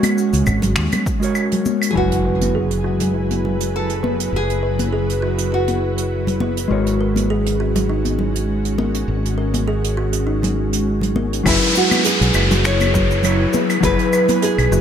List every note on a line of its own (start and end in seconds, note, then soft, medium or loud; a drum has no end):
0.00 1.02 G#3 loud
0.00 1.91 G#3 medium
0.00 1.91 C#4 medium
0.00 1.03 F#4 medium
0.00 1.63 F#4 medium
0.00 1.91 F#4 medium
0.00 1.03 A#4 medium
0.00 1.04 C#5 loud
0.00 closed hi-hat medium
0.00 high conga medium
0.00 claves medium
0.04 cabasa soft
0.18 cabasa medium
0.33 0.42 C#2 medium
0.33 closed hi-hat medium
0.33 cabasa medium
0.46 0.76 G#1 medium
0.46 kick medium
0.46 cabasa medium
0.46 claves medium
0.62 closed hi-hat medium
0.62 low conga medium
0.62 cabasa soft
0.76 0.87 D#2 medium
0.76 finger snap medium
0.76 cabasa medium
0.92 closed hi-hat medium
0.92 high conga medium
0.92 low conga medium
0.92 cabasa soft
0.92 claves medium
1.06 kick loud
1.06 cabasa medium
1.20 1.91 G#3 medium
1.20 1.91 F#4 medium
1.20 1.92 A#4 medium
1.20 closed hi-hat medium
1.20 cabasa medium
1.24 1.93 C#5 medium
1.35 cabasa medium
1.35 claves medium
1.51 closed hi-hat soft
1.51 low conga medium
1.66 high conga medium
1.66 cabasa medium
1.82 closed hi-hat medium
1.82 cabasa medium
1.82 claves medium
1.91 6.66 F#3 medium
1.91 6.67 E4 medium
1.91 1.96 G#4 medium
1.95 4.30 F#1 medium
1.95 6.67 F#3 medium
1.95 6.67 E4 medium
1.95 3.75 F#4 medium
1.95 6.67 B4 medium
1.95 6.68 B4 medium
1.95 6.67 G#5 medium
1.95 4.31 G#5 medium
1.95 impact medium
2.12 closed hi-hat soft
2.25 2.52 B4 medium
2.41 closed hi-hat medium
2.41 high conga medium
2.55 2.82 G#4 medium
2.71 closed hi-hat medium
2.84 3.13 F#4 medium
3.00 closed hi-hat medium
3.00 low conga medium
3.14 3.31 E4 medium
3.30 closed hi-hat soft
3.30 high conga medium
3.45 low conga medium
3.60 closed hi-hat medium
3.76 4.30 A4 medium
3.89 closed hi-hat soft
4.03 4.30 B4 medium
4.03 high conga medium
4.20 closed hi-hat medium
4.33 6.68 F#1 medium
4.33 6.68 F#4 medium
4.33 5.53 G#4 medium
4.50 closed hi-hat soft
4.63 4.90 B4 medium
4.79 closed hi-hat medium
4.79 high conga medium
4.93 5.19 G#4 medium
5.09 closed hi-hat soft
5.22 5.51 F#4 medium
5.38 closed hi-hat medium
5.52 5.69 E4 medium
5.52 6.38 F#4 medium
5.68 closed hi-hat soft
5.68 high conga medium
5.98 closed hi-hat medium
6.27 closed hi-hat soft
6.27 low conga medium
6.40 6.68 B4 medium
6.40 high conga medium
6.57 closed hi-hat medium
6.68 9.05 G#1 medium
6.68 11.41 G#3 medium
6.68 11.42 G#3 medium
6.68 11.42 C#4 medium
6.68 11.42 F#4 medium
6.68 11.43 A#4 medium
6.72 11.43 C#5 medium
6.86 closed hi-hat soft
7.01 7.27 A#4 medium
7.16 closed hi-hat medium
7.16 high conga medium
7.30 7.57 G#4 medium
7.46 closed hi-hat soft
7.60 7.88 F#4 medium
7.75 closed hi-hat medium
7.75 low conga medium
7.89 8.07 D#4 medium
8.05 closed hi-hat soft
8.05 high conga medium
8.19 low conga medium
8.35 closed hi-hat medium
8.65 closed hi-hat soft
8.78 9.05 A#4 medium
8.78 high conga medium
8.94 closed hi-hat medium
9.08 11.43 G#1 medium
9.25 closed hi-hat soft
9.38 9.65 A#4 medium
9.54 closed hi-hat medium
9.54 high conga medium
9.68 9.95 G#4 medium
9.84 closed hi-hat medium
9.97 10.26 F#4 medium
10.13 closed hi-hat medium
10.27 10.44 D#4 medium
10.43 closed hi-hat soft
10.43 high conga medium
10.43 low conga medium
10.73 closed hi-hat medium
11.01 closed hi-hat soft
11.01 low conga medium
11.16 11.43 A#4 medium
11.16 high conga medium
11.33 closed hi-hat medium
11.43 11.56 F#1 medium
11.43 13.20 F#3 medium
11.43 14.81 F#3 medium
11.43 13.20 E4 medium
11.43 14.81 E4 medium
11.43 13.21 G#4 medium
11.43 14.81 G#4 medium
11.43 14.81 B4 medium
11.43 kick loud
11.43 closed hi-hat medium
11.43 downlifter medium
11.43 cabasa medium
11.43 claves medium
11.47 11.74 E4 medium
11.47 13.22 B4 medium
11.62 closed hi-hat soft
11.75 12.04 F#4 medium
11.75 12.02 B4 medium
11.75 cabasa medium
11.91 closed hi-hat medium
11.91 high conga medium
11.91 cabasa soft
11.91 claves medium
12.04 12.32 G#4 medium
12.04 12.66 G#4 loud
12.04 closed hi-hat medium
12.04 cabasa medium
12.21 12.30 B1 medium
12.21 closed hi-hat soft
12.34 13.45 F#1 medium
12.34 12.63 F#4 medium
12.34 cabasa medium
12.34 claves medium
12.51 closed hi-hat medium
12.51 low conga medium
12.51 cabasa medium
12.65 12.82 E4 medium
12.65 13.80 C#5 loud
12.65 finger snap medium
12.65 closed hi-hat medium
12.65 cabasa medium
12.80 closed hi-hat medium
12.80 high conga medium
12.80 cabasa soft
12.80 claves medium
12.94 kick loud
12.94 low conga medium
12.94 cabasa medium
13.11 cabasa medium
13.23 13.79 F#3 medium
13.23 13.80 E4 medium
13.23 13.80 G#4 medium
13.23 13.81 C#5 medium
13.23 closed hi-hat medium
13.23 cabasa medium
13.23 claves medium
13.53 13.80 B4 medium
13.53 high conga medium
13.53 cabasa medium
13.70 closed hi-hat medium
13.70 cabasa medium
13.70 claves medium
13.80 13.93 F#1 loud
13.80 14.81 F#3 loud
13.80 14.81 E4 medium
13.80 14.81 G#4 medium
13.80 kick loud
13.80 closed hi-hat medium
13.80 cabasa medium
13.85 14.39 B4 loud
13.85 14.81 B4 loud
13.99 closed hi-hat soft
14.13 14.40 B4 medium
14.13 cabasa medium
14.13 claves medium
14.29 closed hi-hat medium
14.29 high conga medium
14.29 cabasa medium
14.42 14.70 G#4 loud
14.42 14.81 G#4 medium
14.42 closed hi-hat medium
14.42 cabasa medium
14.58 14.67 B1 medium
14.58 closed hi-hat soft
14.58 claves medium
14.71 14.81 F#1 medium
14.71 14.81 F#4 loud
14.71 cabasa medium